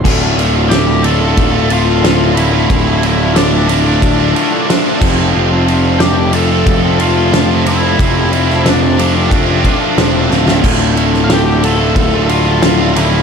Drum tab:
CC |x---------------|--------------x-|----------------|----------------|
RD |--x-x-x-x-x-x-x-|x-x-x-x-x-x-x---|--x-x-x-x-x-x-x-|x-x-x-x-x-x-x---|
SD |----o-------o---|----o-------o---|----o-------o---|---oo-------o-oo|
BD |o-------o-------|o-------o-----o-|--------o-------|o-------o-o-----|

CC |x---------------|
RD |--x-x-x-x-x-x-x-|
SD |---oo-------o---|
BD |o-------o-------|